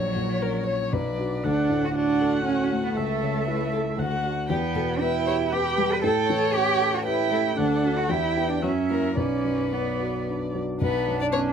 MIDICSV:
0, 0, Header, 1, 5, 480
1, 0, Start_track
1, 0, Key_signature, 2, "minor"
1, 0, Tempo, 512383
1, 1354, Time_signature, 3, 2, 24, 8
1, 7584, Tempo, 542986
1, 9984, Tempo, 519031
1, 10647, End_track
2, 0, Start_track
2, 0, Title_t, "Viola"
2, 0, Program_c, 0, 41
2, 0, Note_on_c, 0, 73, 50
2, 859, Note_off_c, 0, 73, 0
2, 864, Note_on_c, 0, 74, 51
2, 1350, Note_on_c, 0, 78, 45
2, 1364, Note_off_c, 0, 74, 0
2, 1827, Note_off_c, 0, 78, 0
2, 1833, Note_on_c, 0, 78, 58
2, 2779, Note_on_c, 0, 76, 49
2, 2793, Note_off_c, 0, 78, 0
2, 3737, Note_on_c, 0, 78, 53
2, 3751, Note_off_c, 0, 76, 0
2, 4206, Note_off_c, 0, 78, 0
2, 4211, Note_on_c, 0, 79, 50
2, 4677, Note_off_c, 0, 79, 0
2, 4682, Note_on_c, 0, 79, 62
2, 5154, Note_off_c, 0, 79, 0
2, 5160, Note_on_c, 0, 79, 59
2, 5633, Note_off_c, 0, 79, 0
2, 5645, Note_on_c, 0, 79, 52
2, 6117, Note_off_c, 0, 79, 0
2, 6124, Note_on_c, 0, 79, 56
2, 6601, Note_off_c, 0, 79, 0
2, 6607, Note_on_c, 0, 79, 56
2, 7093, Note_on_c, 0, 78, 53
2, 7107, Note_off_c, 0, 79, 0
2, 7578, Note_on_c, 0, 79, 60
2, 7591, Note_off_c, 0, 78, 0
2, 8049, Note_on_c, 0, 76, 50
2, 8063, Note_off_c, 0, 79, 0
2, 8520, Note_off_c, 0, 76, 0
2, 8526, Note_on_c, 0, 74, 44
2, 9010, Note_off_c, 0, 74, 0
2, 9022, Note_on_c, 0, 74, 47
2, 9789, Note_off_c, 0, 74, 0
2, 9983, Note_on_c, 0, 62, 54
2, 10647, Note_off_c, 0, 62, 0
2, 10647, End_track
3, 0, Start_track
3, 0, Title_t, "Violin"
3, 0, Program_c, 1, 40
3, 0, Note_on_c, 1, 73, 56
3, 396, Note_on_c, 1, 70, 54
3, 410, Note_off_c, 1, 73, 0
3, 620, Note_off_c, 1, 70, 0
3, 626, Note_on_c, 1, 73, 54
3, 871, Note_on_c, 1, 71, 58
3, 885, Note_off_c, 1, 73, 0
3, 1353, Note_on_c, 1, 69, 49
3, 1367, Note_off_c, 1, 71, 0
3, 1818, Note_off_c, 1, 69, 0
3, 1823, Note_on_c, 1, 66, 57
3, 2774, Note_on_c, 1, 69, 55
3, 2788, Note_off_c, 1, 66, 0
3, 3254, Note_off_c, 1, 69, 0
3, 3261, Note_on_c, 1, 71, 55
3, 3485, Note_off_c, 1, 71, 0
3, 3491, Note_on_c, 1, 69, 57
3, 3566, Note_off_c, 1, 69, 0
3, 3728, Note_on_c, 1, 66, 59
3, 4199, Note_off_c, 1, 66, 0
3, 4212, Note_on_c, 1, 67, 54
3, 4287, Note_off_c, 1, 67, 0
3, 4453, Note_on_c, 1, 69, 54
3, 4528, Note_off_c, 1, 69, 0
3, 4690, Note_on_c, 1, 71, 59
3, 4924, Note_off_c, 1, 71, 0
3, 4930, Note_on_c, 1, 73, 61
3, 5005, Note_off_c, 1, 73, 0
3, 5175, Note_on_c, 1, 71, 61
3, 5634, Note_off_c, 1, 71, 0
3, 5640, Note_on_c, 1, 69, 57
3, 5715, Note_off_c, 1, 69, 0
3, 5888, Note_on_c, 1, 73, 70
3, 6602, Note_off_c, 1, 73, 0
3, 6613, Note_on_c, 1, 71, 58
3, 6845, Note_off_c, 1, 71, 0
3, 6851, Note_on_c, 1, 69, 64
3, 6926, Note_off_c, 1, 69, 0
3, 7099, Note_on_c, 1, 69, 57
3, 7584, Note_on_c, 1, 67, 58
3, 7597, Note_off_c, 1, 69, 0
3, 8051, Note_off_c, 1, 67, 0
3, 8056, Note_on_c, 1, 66, 51
3, 8127, Note_off_c, 1, 66, 0
3, 8300, Note_on_c, 1, 70, 57
3, 8535, Note_on_c, 1, 71, 52
3, 8548, Note_off_c, 1, 70, 0
3, 9751, Note_off_c, 1, 71, 0
3, 9982, Note_on_c, 1, 71, 68
3, 10319, Note_off_c, 1, 71, 0
3, 10354, Note_on_c, 1, 74, 63
3, 10400, Note_off_c, 1, 74, 0
3, 10460, Note_on_c, 1, 73, 70
3, 10534, Note_off_c, 1, 73, 0
3, 10647, End_track
4, 0, Start_track
4, 0, Title_t, "Cello"
4, 0, Program_c, 2, 42
4, 0, Note_on_c, 2, 54, 68
4, 1083, Note_off_c, 2, 54, 0
4, 1348, Note_on_c, 2, 62, 68
4, 1730, Note_on_c, 2, 66, 59
4, 1744, Note_off_c, 2, 62, 0
4, 1821, Note_off_c, 2, 66, 0
4, 1827, Note_on_c, 2, 62, 75
4, 2285, Note_off_c, 2, 62, 0
4, 2291, Note_on_c, 2, 61, 64
4, 2646, Note_off_c, 2, 61, 0
4, 2670, Note_on_c, 2, 59, 56
4, 2767, Note_off_c, 2, 59, 0
4, 2773, Note_on_c, 2, 57, 69
4, 3944, Note_off_c, 2, 57, 0
4, 4198, Note_on_c, 2, 59, 72
4, 4688, Note_on_c, 2, 64, 78
4, 4702, Note_off_c, 2, 59, 0
4, 5174, Note_on_c, 2, 67, 73
4, 5188, Note_off_c, 2, 64, 0
4, 5550, Note_on_c, 2, 71, 69
4, 5564, Note_off_c, 2, 67, 0
4, 5643, Note_off_c, 2, 71, 0
4, 5649, Note_on_c, 2, 69, 78
4, 6125, Note_on_c, 2, 67, 83
4, 6139, Note_off_c, 2, 69, 0
4, 6504, Note_on_c, 2, 66, 65
4, 6518, Note_off_c, 2, 67, 0
4, 6611, Note_off_c, 2, 66, 0
4, 6617, Note_on_c, 2, 64, 80
4, 7091, Note_off_c, 2, 64, 0
4, 7106, Note_on_c, 2, 62, 70
4, 7476, Note_on_c, 2, 66, 67
4, 7490, Note_off_c, 2, 62, 0
4, 7596, Note_on_c, 2, 64, 75
4, 7609, Note_off_c, 2, 66, 0
4, 7936, Note_on_c, 2, 62, 64
4, 7949, Note_off_c, 2, 64, 0
4, 8053, Note_off_c, 2, 62, 0
4, 8059, Note_on_c, 2, 61, 63
4, 8526, Note_off_c, 2, 61, 0
4, 8533, Note_on_c, 2, 61, 69
4, 9031, Note_on_c, 2, 59, 53
4, 9044, Note_off_c, 2, 61, 0
4, 9513, Note_off_c, 2, 59, 0
4, 9979, Note_on_c, 2, 59, 63
4, 10349, Note_on_c, 2, 62, 58
4, 10363, Note_off_c, 2, 59, 0
4, 10463, Note_off_c, 2, 62, 0
4, 10468, Note_on_c, 2, 61, 66
4, 10647, Note_off_c, 2, 61, 0
4, 10647, End_track
5, 0, Start_track
5, 0, Title_t, "Grand piano"
5, 0, Program_c, 3, 0
5, 0, Note_on_c, 3, 34, 50
5, 88, Control_c, 3, 64, 127
5, 148, Note_on_c, 3, 46, 38
5, 388, Note_on_c, 3, 61, 40
5, 532, Note_off_c, 3, 46, 0
5, 622, Note_on_c, 3, 73, 42
5, 772, Note_off_c, 3, 61, 0
5, 840, Note_off_c, 3, 34, 0
5, 866, Note_off_c, 3, 73, 0
5, 871, Note_on_c, 3, 35, 51
5, 886, Control_c, 3, 64, 0
5, 1064, Control_c, 3, 64, 127
5, 1104, Note_on_c, 3, 62, 38
5, 1105, Note_on_c, 3, 66, 43
5, 1326, Note_off_c, 3, 62, 0
5, 1326, Note_off_c, 3, 66, 0
5, 1341, Note_off_c, 3, 35, 0
5, 1351, Note_on_c, 3, 38, 53
5, 1372, Control_c, 3, 64, 0
5, 1499, Control_c, 3, 64, 127
5, 1589, Note_on_c, 3, 45, 39
5, 1833, Note_on_c, 3, 62, 40
5, 1970, Note_off_c, 3, 45, 0
5, 2070, Note_on_c, 3, 69, 46
5, 2210, Note_off_c, 3, 62, 0
5, 2315, Note_on_c, 3, 66, 38
5, 2447, Note_off_c, 3, 69, 0
5, 2551, Note_on_c, 3, 57, 44
5, 2689, Note_off_c, 3, 66, 0
5, 2740, Note_off_c, 3, 38, 0
5, 2784, Note_off_c, 3, 57, 0
5, 2787, Note_on_c, 3, 37, 51
5, 2797, Control_c, 3, 64, 0
5, 2960, Control_c, 3, 64, 127
5, 3021, Note_on_c, 3, 49, 41
5, 3257, Note_on_c, 3, 64, 47
5, 3400, Note_off_c, 3, 49, 0
5, 3492, Note_on_c, 3, 69, 47
5, 3637, Note_off_c, 3, 64, 0
5, 3707, Note_off_c, 3, 37, 0
5, 3724, Note_on_c, 3, 38, 54
5, 3731, Note_off_c, 3, 69, 0
5, 3751, Control_c, 3, 64, 0
5, 3911, Control_c, 3, 64, 127
5, 3964, Note_on_c, 3, 62, 44
5, 3967, Note_on_c, 3, 66, 46
5, 4183, Note_off_c, 3, 62, 0
5, 4185, Note_off_c, 3, 66, 0
5, 4193, Note_off_c, 3, 38, 0
5, 4211, Note_on_c, 3, 40, 56
5, 4227, Control_c, 3, 64, 0
5, 4402, Control_c, 3, 64, 127
5, 4453, Note_on_c, 3, 47, 44
5, 4694, Note_on_c, 3, 59, 49
5, 4834, Note_off_c, 3, 47, 0
5, 4930, Note_on_c, 3, 67, 50
5, 5074, Note_off_c, 3, 59, 0
5, 5174, Note_on_c, 3, 59, 46
5, 5312, Note_off_c, 3, 67, 0
5, 5413, Note_on_c, 3, 55, 44
5, 5554, Note_off_c, 3, 59, 0
5, 5609, Note_off_c, 3, 40, 0
5, 5650, Note_off_c, 3, 55, 0
5, 5654, Note_on_c, 3, 45, 57
5, 5663, Control_c, 3, 64, 0
5, 5796, Control_c, 3, 64, 127
5, 5899, Note_on_c, 3, 52, 45
5, 6134, Note_on_c, 3, 61, 52
5, 6280, Note_off_c, 3, 52, 0
5, 6373, Note_on_c, 3, 69, 50
5, 6520, Note_off_c, 3, 61, 0
5, 6617, Note_on_c, 3, 67, 49
5, 6762, Note_off_c, 3, 69, 0
5, 6852, Note_on_c, 3, 57, 46
5, 7005, Note_off_c, 3, 67, 0
5, 7067, Note_off_c, 3, 45, 0
5, 7097, Note_off_c, 3, 57, 0
5, 7103, Note_on_c, 3, 38, 56
5, 7117, Control_c, 3, 64, 0
5, 7251, Control_c, 3, 64, 127
5, 7339, Note_on_c, 3, 62, 42
5, 7346, Note_on_c, 3, 66, 42
5, 7560, Note_off_c, 3, 62, 0
5, 7563, Note_off_c, 3, 66, 0
5, 7572, Note_off_c, 3, 38, 0
5, 7581, Note_on_c, 3, 40, 54
5, 7601, Control_c, 3, 64, 0
5, 7724, Control_c, 3, 64, 127
5, 7827, Note_on_c, 3, 59, 40
5, 7829, Note_on_c, 3, 64, 42
5, 8035, Note_off_c, 3, 59, 0
5, 8036, Note_off_c, 3, 64, 0
5, 8037, Note_off_c, 3, 40, 0
5, 8055, Note_on_c, 3, 42, 53
5, 8072, Control_c, 3, 64, 0
5, 8203, Control_c, 3, 64, 127
5, 8296, Note_on_c, 3, 64, 43
5, 8297, Note_on_c, 3, 58, 39
5, 8512, Note_off_c, 3, 58, 0
5, 8512, Note_off_c, 3, 64, 0
5, 8519, Note_off_c, 3, 42, 0
5, 8535, Note_on_c, 3, 35, 48
5, 8549, Control_c, 3, 64, 0
5, 8714, Control_c, 3, 64, 127
5, 8777, Note_on_c, 3, 42, 38
5, 9023, Note_on_c, 3, 59, 42
5, 9169, Note_off_c, 3, 42, 0
5, 9266, Note_on_c, 3, 66, 41
5, 9413, Note_off_c, 3, 59, 0
5, 9510, Note_on_c, 3, 62, 37
5, 9653, Note_off_c, 3, 66, 0
5, 9748, Note_on_c, 3, 54, 39
5, 9892, Note_off_c, 3, 62, 0
5, 9951, Note_off_c, 3, 35, 0
5, 9984, Note_off_c, 3, 54, 0
5, 9989, Note_on_c, 3, 35, 51
5, 10005, Control_c, 3, 64, 0
5, 10171, Control_c, 3, 64, 127
5, 10228, Note_on_c, 3, 42, 41
5, 10462, Note_on_c, 3, 59, 46
5, 10610, Note_off_c, 3, 42, 0
5, 10647, Note_off_c, 3, 35, 0
5, 10647, Note_off_c, 3, 59, 0
5, 10647, End_track
0, 0, End_of_file